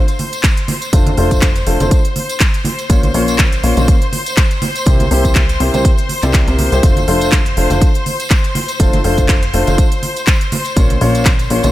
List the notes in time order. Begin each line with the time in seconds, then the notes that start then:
Already playing: C5 C6
0.08 closed hi-hat, tambourine
0.19 open hi-hat, high conga
0.33 closed hi-hat, tambourine
0.43 kick, clap, closed hi-hat, tambourine
0.56 closed hi-hat, tambourine
0.68 open hi-hat, high conga
0.82 closed hi-hat, tambourine
0.93 F1 A3 D4 F4 C5, kick, closed hi-hat, tambourine
1.06 closed hi-hat, tambourine, high conga
1.17 F1 A3 D4 F4 C5, open hi-hat
1.31 kick, closed hi-hat, tambourine
1.42 kick, clap, closed hi-hat, tambourine, high conga
1.56 closed hi-hat, tambourine
1.67 F1 A3 D4 F4 C5, open hi-hat
1.80 F1 A3 D4 F4 C5, closed hi-hat, tambourine, high conga
1.91 kick, closed hi-hat, tambourine
2.04 closed hi-hat, tambourine
2.16 open hi-hat, high conga
2.29 closed hi-hat, tambourine
2.40 kick, clap, closed hi-hat, tambourine
2.53 closed hi-hat, tambourine
2.65 open hi-hat, high conga
2.79 closed hi-hat, tambourine
2.90 A#1 A#2 A#3 C#4 F4 C#5, kick, closed hi-hat, tambourine
3.03 closed hi-hat, tambourine, high conga
3.14 A#1 A#2 A#3 C#4 F4 C#5, open hi-hat
3.28 closed hi-hat, tambourine
3.38 kick, clap, closed hi-hat, tambourine, high conga
3.52 closed hi-hat, tambourine
3.63 A#1 A#2 A#3 C#4 F4 C#5, open hi-hat
3.77 A#1 A#2 A#3 C#4 F4 C#5, closed hi-hat, tambourine, high conga
3.88 kick, closed hi-hat, tambourine
4.02 closed hi-hat, tambourine
4.12 open hi-hat, high conga
4.26 closed hi-hat, tambourine
4.37 kick, clap, closed hi-hat
4.51 closed hi-hat, tambourine
4.62 open hi-hat, high conga
4.75 closed hi-hat, tambourine
4.86 C2 C3 A#3 E4 G4 C5, kick, closed hi-hat, tambourine
5.00 closed hi-hat, tambourine, high conga
5.11 C2 C3 A#3 E4 G4 C5, open hi-hat
5.25 kick, closed hi-hat, tambourine
5.35 kick, clap, closed hi-hat, tambourine, high conga
5.49 closed hi-hat, tambourine
5.60 C2 C3 A#3 E4 G4 C5, open hi-hat
5.74 C2 C3 A#3 E4 G4 C5, closed hi-hat, tambourine, high conga
5.85 kick, closed hi-hat, tambourine
5.97 closed hi-hat, tambourine
6.09 open hi-hat, high conga
6.22 C2 C3 A#3 E4 G4 D5, clap, closed hi-hat, tambourine
6.33 kick, clap, closed hi-hat, tambourine
6.48 C2 C3 A#3 E4 G4 A#4, closed hi-hat, tambourine
6.59 open hi-hat, high conga
6.72 C2 A#3 E4 G4 C5, closed hi-hat, tambourine
6.83 F1 A3 D4 F4 C5, kick, closed hi-hat, tambourine
6.96 closed hi-hat, tambourine, high conga
7.08 F1 A3 D4 F4 C5, open hi-hat
7.21 closed hi-hat, tambourine
7.32 kick, clap, closed hi-hat, tambourine, high conga
7.46 closed hi-hat, tambourine
7.57 F1 A3 D4 F4 C5, open hi-hat
7.70 F1 A3 D4 F4 C5, closed hi-hat, tambourine, high conga
7.81 kick, closed hi-hat, tambourine
7.94 closed hi-hat, tambourine
8.06 open hi-hat, high conga
8.20 closed hi-hat, tambourine
8.30 kick, clap, closed hi-hat, tambourine
8.44 closed hi-hat, tambourine
8.55 open hi-hat, high conga
8.68 closed hi-hat, tambourine
8.80 F1 A3 D4 F4 C5, kick, closed hi-hat, tambourine
8.93 closed hi-hat, tambourine, high conga
9.04 F1 A3 D4 F4 C5, open hi-hat
9.18 kick, closed hi-hat, tambourine
9.28 kick, clap, closed hi-hat, tambourine, high conga
9.42 closed hi-hat, tambourine
9.54 F1 A3 D4 F4 C5, open hi-hat
9.67 F1 A3 D4 F4 C5, closed hi-hat, tambourine, high conga
9.78 kick, closed hi-hat, tambourine
9.91 closed hi-hat, tambourine
10.03 open hi-hat, high conga
10.16 closed hi-hat, tambourine
10.27 kick, clap, closed hi-hat, tambourine
10.41 closed hi-hat, tambourine
10.52 open hi-hat, high conga
10.65 closed hi-hat, tambourine
10.76 A#1 A#2 A#3 C#4 F4 C#5, kick, closed hi-hat, tambourine
10.90 closed hi-hat, tambourine, high conga
11.01 A#1 A#2 A#3 C#4 F4 C#5, open hi-hat
11.15 closed hi-hat, tambourine
11.25 kick, clap, closed hi-hat, tambourine, high conga
11.39 closed hi-hat, tambourine
11.50 A#1 A#2 A#3 C#4 F4 C#5, open hi-hat
11.63 A#1 A#2 A#3 C#4 F4 C#5, closed hi-hat, tambourine, high conga